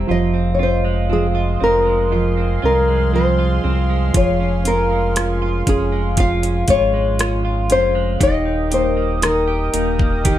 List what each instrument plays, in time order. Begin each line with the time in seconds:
Already playing: clean electric guitar C3 C4 E4, upright piano G3 E4
0.07 sub bass F1, clean electric guitar F2 F4, upright piano F3, analog synth pad G#4 D#5 F5 C6
0.11 nylon-string guitar D#5
0.34 clean electric guitar C4
0.55 nylon-string guitar C#5
0.59 upright piano C4, clean electric guitar F4
0.63 nylon-string guitar C5
0.85 clean electric guitar G#3
1.09 upright piano F3, clean electric guitar C4, nylon-string guitar G#4
1.35 clean electric guitar F4
1.60 sub bass F1, clean electric guitar C4, upright piano C4, nylon-string guitar A#4
1.86 clean electric guitar G#3
2.11 clean electric guitar F2 F4, upright piano F3
2.37 clean electric guitar C4
2.62 sub bass C2, upright piano C4, clean electric guitar F4, nylon-string guitar A#4
2.88 clean electric guitar G#3
3.13 upright piano F3, clean electric guitar C4, nylon-string guitar C5
3.39 clean electric guitar F4
3.63 sub bass C2, upright piano C4, clean electric guitar C4
3.89 clean electric guitar G#3
4.13 sub bass F1, clean electric guitar F2 F4, upright piano F3, nylon-string guitar C#5, kick, closed hi-hat
4.40 clean electric guitar C#4
4.64 upright piano C4, clean electric guitar F4, nylon-string guitar A#4, closed hi-hat
4.91 clean electric guitar G#3
5.16 clean electric guitar C#4, upright piano F4, cross-stick, closed hi-hat
5.42 clean electric guitar F4
5.67 sub bass F1, upright piano C#4, clean electric guitar C#4, nylon-string guitar G#4, kick, closed hi-hat
5.92 clean electric guitar G#3
6.17 clean electric guitar F2 F4, upright piano F4, nylon-string guitar F5, kick, closed hi-hat
6.43 clean electric guitar C#4, closed hi-hat
6.68 sub bass G#1, upright piano G#3, clean electric guitar F4, nylon-string guitar C#5, kick, closed hi-hat
6.94 clean electric guitar G#3
7.19 clean electric guitar C#4, upright piano F4, cross-stick, closed hi-hat
7.45 clean electric guitar F4
7.70 sub bass F1, upright piano C4, clean electric guitar C#4, nylon-string guitar C5, closed hi-hat
7.95 clean electric guitar G#3
8.20 sub bass D#1, clean electric guitar D#3 G4, upright piano D#3, analog synth pad A#4 D#5 G5 D#6, nylon-string guitar D#5, kick, closed hi-hat
8.46 clean electric guitar D#4
8.71 upright piano A#3, clean electric guitar G4, nylon-string guitar C5, closed hi-hat
8.97 clean electric guitar A#3
9.22 upright piano D#3, clean electric guitar D#4, nylon-string guitar A#4, cross-stick, closed hi-hat
9.48 clean electric guitar G4
9.73 sub bass D#1, upright piano A#3, clean electric guitar D#4, closed hi-hat
9.99 clean electric guitar A#3, kick
10.25 clean electric guitar D#3 G4, upright piano D#3, nylon-string guitar G4, kick, closed hi-hat